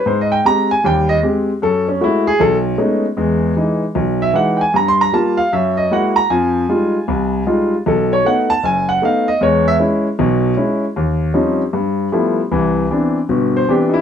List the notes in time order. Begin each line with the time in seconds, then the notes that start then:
0.06 G#2 C5
0.21 D#5
0.32 G5
0.45 G#3 C4 G4 A#5
0.71 G#5
0.84 D#2 G3 G5
1.09 D#5
1.23 G#3 C4 G4
1.62 F#2 A4
1.88 C#4
2.00 G#3 A3 E4 F#4
2.27 G#4
2.40 B1 A4
2.78 G#3 A3 B3 C#4 D#4
3.17 E2 G#3
3.57 E3 G#3 D#4
3.95 B1
4.22 E5
4.33 E3 G#3 D#4 F#5
4.57 G5
4.61 G#5
4.74 G2 A#5
4.88 C6
5.01 A#5
5.13 G3 A#3 F4 A5
5.37 F5
5.53 F#2 E5
5.77 D#5
5.91 G#3 A#3 E4 F#4 F#5
6.16 A#5
6.30 F2 F3 G#5
6.69 G3 G#3 D#4 F4
7.08 C2
7.47 G3 G#3 D#4 F4
7.86 B1 A4
8.13 C#5
8.25 A3 B3 D#4 F#5
8.50 A5
8.63 F#1 G#5
8.89 F#5
9.02 A3 B3 D#4 F5
9.28 D#5
9.41 E2 G#3 C#5
9.68 E5
9.79 G#3 C#4 E4
10.19 B1 B2
10.57 G#3 C#4 E4
10.96 D#2
11.34 F3 G3 C4 C#4 D#4
11.73 G2
12.12 F3 G3 A3 B3 E4
12.52 C2 E3
12.90 E3 B3 C4 D4
13.29 G1 B2
13.57 C5
13.69 E3 B3 C4 D4 G4
13.90 D#4
13.94 E4